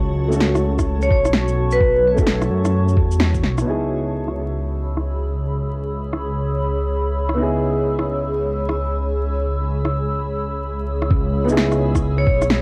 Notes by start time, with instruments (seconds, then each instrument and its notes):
Already playing: detuned saw bass C#2, upright piano A3 C#4 F#4 A4, ambient pad F#4 C#5 A5 C#6
0.28 upright piano A3 C#4
0.32 upright piano F#4 A4, shaker
0.40 snare
0.55 cross-stick, shaker
0.79 kick, cross-stick, shaker
1.02 vibraphone C#5, shaker
1.11 detuned saw bass B1, vibraphone C#5, kick
1.25 cross-stick, shaker
1.33 snare
1.48 shaker
1.71 vibraphone B4, shaker
1.80 kick
2.14 upright piano A3 C#4, kick, shaker
2.19 upright piano F#4 A4
2.26 snare
2.41 cross-stick, shaker
2.50 detuned saw bass F#2
2.65 cross-stick, shaker
2.88 shaker
2.97 detuned saw bass E2, kick
3.11 shaker
3.20 snare
3.34 kick, shaker
3.43 detuned saw bass B1, snare
3.58 upright piano B3, cross-stick, shaker
3.64 detuned saw bass C#2, upright piano D#4 E4, ambient pad G#4 C#5 B5 E6
3.69 upright piano G#4
4.28 cross-stick
4.97 cross-stick
6.13 cross-stick
7.29 cross-stick
7.34 upright piano B3 D#4
7.39 upright piano E4 G#4
7.99 cross-stick
8.69 cross-stick
9.85 cross-stick
11.02 cross-stick
11.10 detuned saw bass C#2, ambient pad G#4 C#5 B5 E6, kick
11.44 upright piano B3 D#4
11.49 upright piano E4 G#4, shaker
11.57 snare
11.72 cross-stick, shaker
11.95 kick, cross-stick, shaker
12.18 vibraphone C#5
12.27 detuned saw bass B1, vibraphone C#5, kick
12.42 cross-stick, shaker
12.50 snare